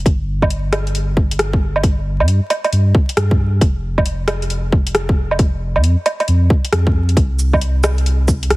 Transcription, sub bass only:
0, 0, Header, 1, 2, 480
1, 0, Start_track
1, 0, Tempo, 444444
1, 64, Time_signature, 4, 2, 24, 8
1, 9251, End_track
2, 0, Start_track
2, 0, Title_t, "Sub bass"
2, 0, Program_c, 0, 38
2, 62, Note_on_c, 0, 31, 98
2, 2377, Note_on_c, 0, 43, 97
2, 2393, Note_off_c, 0, 31, 0
2, 2593, Note_off_c, 0, 43, 0
2, 2941, Note_on_c, 0, 43, 85
2, 3169, Note_off_c, 0, 43, 0
2, 3422, Note_on_c, 0, 43, 88
2, 3892, Note_off_c, 0, 43, 0
2, 3902, Note_on_c, 0, 29, 99
2, 6217, Note_on_c, 0, 41, 95
2, 6234, Note_off_c, 0, 29, 0
2, 6433, Note_off_c, 0, 41, 0
2, 6781, Note_on_c, 0, 41, 84
2, 7008, Note_off_c, 0, 41, 0
2, 7262, Note_on_c, 0, 41, 89
2, 7732, Note_off_c, 0, 41, 0
2, 7741, Note_on_c, 0, 36, 98
2, 9251, Note_off_c, 0, 36, 0
2, 9251, End_track
0, 0, End_of_file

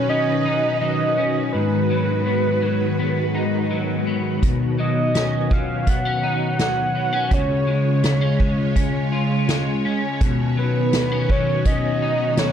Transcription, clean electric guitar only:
0, 0, Header, 1, 2, 480
1, 0, Start_track
1, 0, Tempo, 722892
1, 1021, Time_signature, 4, 2, 24, 8
1, 8315, End_track
2, 0, Start_track
2, 0, Title_t, "Clean electric guitar"
2, 0, Program_c, 0, 27
2, 0, Note_on_c, 0, 47, 65
2, 0, Note_on_c, 0, 54, 57
2, 60, Note_on_c, 0, 61, 61
2, 301, Note_on_c, 0, 63, 65
2, 536, Note_off_c, 0, 54, 0
2, 539, Note_on_c, 0, 54, 57
2, 773, Note_off_c, 0, 61, 0
2, 781, Note_on_c, 0, 61, 56
2, 1021, Note_off_c, 0, 47, 0
2, 1023, Note_on_c, 0, 44, 68
2, 1069, Note_off_c, 0, 61, 0
2, 1260, Note_off_c, 0, 54, 0
2, 1263, Note_on_c, 0, 54, 53
2, 1501, Note_on_c, 0, 59, 52
2, 1738, Note_off_c, 0, 54, 0
2, 1740, Note_on_c, 0, 54, 57
2, 1983, Note_off_c, 0, 59, 0
2, 1986, Note_on_c, 0, 59, 58
2, 2219, Note_off_c, 0, 63, 0
2, 2222, Note_on_c, 0, 63, 59
2, 2459, Note_off_c, 0, 54, 0
2, 2462, Note_on_c, 0, 54, 52
2, 2699, Note_off_c, 0, 59, 0
2, 2701, Note_on_c, 0, 59, 52
2, 2939, Note_off_c, 0, 44, 0
2, 2942, Note_on_c, 0, 47, 69
2, 3175, Note_off_c, 0, 54, 0
2, 3178, Note_on_c, 0, 54, 58
2, 3413, Note_off_c, 0, 59, 0
2, 3416, Note_on_c, 0, 61, 51
2, 3435, Note_off_c, 0, 63, 0
2, 3652, Note_off_c, 0, 54, 0
2, 3660, Note_on_c, 0, 54, 57
2, 3897, Note_off_c, 0, 61, 0
2, 3900, Note_on_c, 0, 59, 57
2, 4018, Note_off_c, 0, 59, 0
2, 4018, Note_on_c, 0, 61, 48
2, 4139, Note_on_c, 0, 63, 64
2, 4368, Note_off_c, 0, 54, 0
2, 4376, Note_on_c, 0, 54, 57
2, 4611, Note_off_c, 0, 61, 0
2, 4613, Note_on_c, 0, 59, 52
2, 4731, Note_off_c, 0, 59, 0
2, 4731, Note_on_c, 0, 61, 53
2, 4852, Note_on_c, 0, 49, 79
2, 4862, Note_off_c, 0, 47, 0
2, 4904, Note_off_c, 0, 61, 0
2, 4907, Note_off_c, 0, 54, 0
2, 4908, Note_off_c, 0, 63, 0
2, 5092, Note_on_c, 0, 56, 54
2, 5334, Note_on_c, 0, 59, 57
2, 5452, Note_off_c, 0, 59, 0
2, 5452, Note_on_c, 0, 61, 51
2, 5572, Note_off_c, 0, 56, 0
2, 5580, Note_on_c, 0, 56, 58
2, 5807, Note_off_c, 0, 61, 0
2, 5815, Note_on_c, 0, 61, 59
2, 6056, Note_on_c, 0, 65, 64
2, 6288, Note_off_c, 0, 56, 0
2, 6296, Note_on_c, 0, 56, 59
2, 6537, Note_off_c, 0, 61, 0
2, 6540, Note_on_c, 0, 61, 54
2, 6777, Note_off_c, 0, 49, 0
2, 6778, Note_on_c, 0, 47, 75
2, 6827, Note_off_c, 0, 56, 0
2, 6827, Note_off_c, 0, 65, 0
2, 7019, Note_on_c, 0, 54, 57
2, 7257, Note_off_c, 0, 61, 0
2, 7259, Note_on_c, 0, 59, 51
2, 7381, Note_off_c, 0, 59, 0
2, 7381, Note_on_c, 0, 61, 54
2, 7499, Note_off_c, 0, 54, 0
2, 7501, Note_on_c, 0, 54, 63
2, 7739, Note_off_c, 0, 61, 0
2, 7747, Note_on_c, 0, 61, 57
2, 7983, Note_on_c, 0, 63, 66
2, 8219, Note_off_c, 0, 54, 0
2, 8221, Note_on_c, 0, 54, 52
2, 8315, Note_off_c, 0, 47, 0
2, 8315, Note_off_c, 0, 54, 0
2, 8315, Note_off_c, 0, 61, 0
2, 8315, Note_off_c, 0, 63, 0
2, 8315, End_track
0, 0, End_of_file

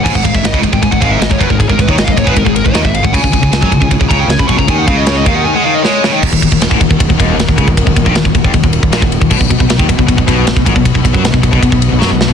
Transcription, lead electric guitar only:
0, 0, Header, 1, 2, 480
1, 0, Start_track
1, 0, Key_signature, -6, "minor"
1, 0, Tempo, 385604
1, 66, Time_signature, 4, 2, 24, 8
1, 15348, End_track
2, 0, Start_track
2, 0, Title_t, "Lead electric guitar"
2, 0, Program_c, 0, 29
2, 51, Note_on_c, 0, 80, 104
2, 175, Note_off_c, 0, 80, 0
2, 191, Note_on_c, 0, 78, 96
2, 299, Note_off_c, 0, 78, 0
2, 304, Note_on_c, 0, 77, 93
2, 422, Note_off_c, 0, 77, 0
2, 435, Note_on_c, 0, 76, 90
2, 570, Note_off_c, 0, 76, 0
2, 570, Note_on_c, 0, 75, 94
2, 707, Note_off_c, 0, 75, 0
2, 909, Note_on_c, 0, 79, 86
2, 1021, Note_off_c, 0, 79, 0
2, 1026, Note_on_c, 0, 80, 117
2, 1143, Note_off_c, 0, 80, 0
2, 1148, Note_on_c, 0, 78, 85
2, 1255, Note_off_c, 0, 78, 0
2, 1260, Note_on_c, 0, 77, 106
2, 1380, Note_off_c, 0, 77, 0
2, 1388, Note_on_c, 0, 76, 96
2, 1491, Note_off_c, 0, 76, 0
2, 1496, Note_on_c, 0, 75, 87
2, 1618, Note_off_c, 0, 75, 0
2, 1633, Note_on_c, 0, 73, 79
2, 1743, Note_on_c, 0, 71, 93
2, 1747, Note_off_c, 0, 73, 0
2, 1862, Note_off_c, 0, 71, 0
2, 1870, Note_on_c, 0, 70, 85
2, 1980, Note_off_c, 0, 70, 0
2, 1985, Note_on_c, 0, 68, 77
2, 2097, Note_off_c, 0, 68, 0
2, 2102, Note_on_c, 0, 70, 89
2, 2222, Note_off_c, 0, 70, 0
2, 2249, Note_on_c, 0, 71, 99
2, 2364, Note_off_c, 0, 71, 0
2, 2364, Note_on_c, 0, 73, 92
2, 2461, Note_off_c, 0, 73, 0
2, 2466, Note_on_c, 0, 75, 90
2, 2542, Note_on_c, 0, 77, 105
2, 2545, Note_off_c, 0, 75, 0
2, 2623, Note_off_c, 0, 77, 0
2, 2637, Note_on_c, 0, 75, 88
2, 2704, Note_off_c, 0, 75, 0
2, 2709, Note_on_c, 0, 73, 105
2, 2826, Note_off_c, 0, 73, 0
2, 2826, Note_on_c, 0, 71, 85
2, 2950, Note_off_c, 0, 71, 0
2, 2950, Note_on_c, 0, 70, 95
2, 3066, Note_off_c, 0, 70, 0
2, 3066, Note_on_c, 0, 68, 80
2, 3175, Note_off_c, 0, 68, 0
2, 3180, Note_on_c, 0, 70, 95
2, 3301, Note_off_c, 0, 70, 0
2, 3304, Note_on_c, 0, 73, 84
2, 3420, Note_off_c, 0, 73, 0
2, 3425, Note_on_c, 0, 75, 96
2, 3544, Note_off_c, 0, 75, 0
2, 3549, Note_on_c, 0, 76, 91
2, 3666, Note_off_c, 0, 76, 0
2, 3669, Note_on_c, 0, 77, 109
2, 3786, Note_off_c, 0, 77, 0
2, 3793, Note_on_c, 0, 78, 93
2, 3908, Note_off_c, 0, 78, 0
2, 3917, Note_on_c, 0, 80, 104
2, 4825, Note_off_c, 0, 80, 0
2, 5087, Note_on_c, 0, 82, 107
2, 5216, Note_off_c, 0, 82, 0
2, 5220, Note_on_c, 0, 79, 100
2, 5340, Note_off_c, 0, 79, 0
2, 5340, Note_on_c, 0, 80, 103
2, 5463, Note_off_c, 0, 80, 0
2, 5469, Note_on_c, 0, 83, 98
2, 5570, Note_off_c, 0, 83, 0
2, 5575, Note_on_c, 0, 85, 116
2, 5696, Note_off_c, 0, 85, 0
2, 5701, Note_on_c, 0, 82, 86
2, 5823, Note_off_c, 0, 82, 0
2, 5835, Note_on_c, 0, 80, 98
2, 5950, Note_off_c, 0, 80, 0
2, 5959, Note_on_c, 0, 78, 95
2, 6063, Note_off_c, 0, 78, 0
2, 6068, Note_on_c, 0, 77, 99
2, 6180, Note_on_c, 0, 75, 86
2, 6187, Note_off_c, 0, 77, 0
2, 6300, Note_off_c, 0, 75, 0
2, 6305, Note_on_c, 0, 73, 89
2, 6426, Note_off_c, 0, 73, 0
2, 6434, Note_on_c, 0, 75, 86
2, 6544, Note_on_c, 0, 77, 102
2, 6550, Note_off_c, 0, 75, 0
2, 6663, Note_off_c, 0, 77, 0
2, 6668, Note_on_c, 0, 78, 92
2, 6781, Note_off_c, 0, 78, 0
2, 6786, Note_on_c, 0, 80, 109
2, 6898, Note_off_c, 0, 80, 0
2, 6903, Note_on_c, 0, 78, 98
2, 7014, Note_off_c, 0, 78, 0
2, 7019, Note_on_c, 0, 77, 89
2, 7143, Note_off_c, 0, 77, 0
2, 7151, Note_on_c, 0, 75, 94
2, 7257, Note_off_c, 0, 75, 0
2, 7262, Note_on_c, 0, 73, 83
2, 7602, Note_off_c, 0, 73, 0
2, 15348, End_track
0, 0, End_of_file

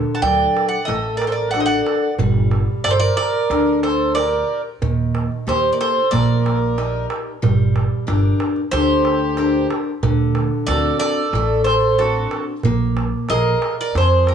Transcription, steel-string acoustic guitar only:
0, 0, Header, 1, 2, 480
1, 0, Start_track
1, 0, Tempo, 652884
1, 1614, Time_signature, 4, 2, 24, 8
1, 10548, End_track
2, 0, Start_track
2, 0, Title_t, "Steel-string acoustic guitar"
2, 0, Program_c, 0, 25
2, 0, Note_on_c, 0, 50, 67
2, 154, Note_off_c, 0, 50, 0
2, 170, Note_on_c, 0, 54, 42
2, 173, Note_on_c, 0, 62, 38
2, 177, Note_on_c, 0, 69, 49
2, 556, Note_off_c, 0, 54, 0
2, 556, Note_off_c, 0, 62, 0
2, 559, Note_off_c, 0, 69, 0
2, 648, Note_on_c, 0, 57, 69
2, 1116, Note_off_c, 0, 57, 0
2, 1133, Note_on_c, 0, 62, 48
2, 1136, Note_on_c, 0, 66, 42
2, 1141, Note_on_c, 0, 69, 50
2, 1518, Note_off_c, 0, 62, 0
2, 1520, Note_off_c, 0, 69, 0
2, 1521, Note_off_c, 0, 66, 0
2, 1613, Note_on_c, 0, 55, 74
2, 2080, Note_off_c, 0, 55, 0
2, 2096, Note_on_c, 0, 67, 47
2, 2101, Note_on_c, 0, 70, 41
2, 2481, Note_off_c, 0, 67, 0
2, 2481, Note_off_c, 0, 70, 0
2, 2579, Note_on_c, 0, 50, 68
2, 3044, Note_off_c, 0, 50, 0
2, 3060, Note_on_c, 0, 67, 47
2, 3064, Note_on_c, 0, 70, 47
2, 3443, Note_off_c, 0, 67, 0
2, 3445, Note_off_c, 0, 70, 0
2, 3544, Note_on_c, 0, 51, 68
2, 4006, Note_off_c, 0, 51, 0
2, 4019, Note_on_c, 0, 63, 44
2, 4026, Note_on_c, 0, 58, 48
2, 4027, Note_on_c, 0, 67, 36
2, 4403, Note_off_c, 0, 63, 0
2, 4405, Note_off_c, 0, 67, 0
2, 4406, Note_off_c, 0, 58, 0
2, 4498, Note_on_c, 0, 58, 74
2, 4964, Note_off_c, 0, 58, 0
2, 4983, Note_on_c, 0, 63, 44
2, 4986, Note_on_c, 0, 67, 44
2, 4992, Note_on_c, 0, 70, 39
2, 5365, Note_off_c, 0, 63, 0
2, 5367, Note_off_c, 0, 67, 0
2, 5368, Note_off_c, 0, 70, 0
2, 5457, Note_on_c, 0, 55, 68
2, 5923, Note_off_c, 0, 55, 0
2, 5931, Note_on_c, 0, 62, 48
2, 5935, Note_on_c, 0, 67, 37
2, 5939, Note_on_c, 0, 70, 57
2, 6318, Note_off_c, 0, 62, 0
2, 6320, Note_off_c, 0, 67, 0
2, 6322, Note_off_c, 0, 70, 0
2, 6419, Note_on_c, 0, 50, 74
2, 6884, Note_off_c, 0, 50, 0
2, 6892, Note_on_c, 0, 67, 40
2, 6895, Note_on_c, 0, 62, 53
2, 6898, Note_on_c, 0, 70, 53
2, 7278, Note_off_c, 0, 67, 0
2, 7280, Note_off_c, 0, 62, 0
2, 7282, Note_off_c, 0, 70, 0
2, 7373, Note_on_c, 0, 50, 73
2, 7840, Note_off_c, 0, 50, 0
2, 7861, Note_on_c, 0, 60, 45
2, 7865, Note_on_c, 0, 62, 42
2, 7869, Note_on_c, 0, 66, 45
2, 8243, Note_off_c, 0, 60, 0
2, 8247, Note_off_c, 0, 62, 0
2, 8247, Note_off_c, 0, 66, 0
2, 8345, Note_on_c, 0, 57, 75
2, 8807, Note_off_c, 0, 57, 0
2, 8815, Note_on_c, 0, 60, 50
2, 8823, Note_on_c, 0, 62, 39
2, 8823, Note_on_c, 0, 66, 49
2, 9201, Note_off_c, 0, 60, 0
2, 9202, Note_off_c, 0, 62, 0
2, 9204, Note_off_c, 0, 66, 0
2, 9298, Note_on_c, 0, 58, 73
2, 9763, Note_off_c, 0, 58, 0
2, 9784, Note_on_c, 0, 68, 55
2, 9787, Note_on_c, 0, 70, 36
2, 9789, Note_on_c, 0, 77, 49
2, 10165, Note_off_c, 0, 68, 0
2, 10166, Note_off_c, 0, 70, 0
2, 10168, Note_off_c, 0, 77, 0
2, 10264, Note_on_c, 0, 53, 70
2, 10548, Note_off_c, 0, 53, 0
2, 10548, End_track
0, 0, End_of_file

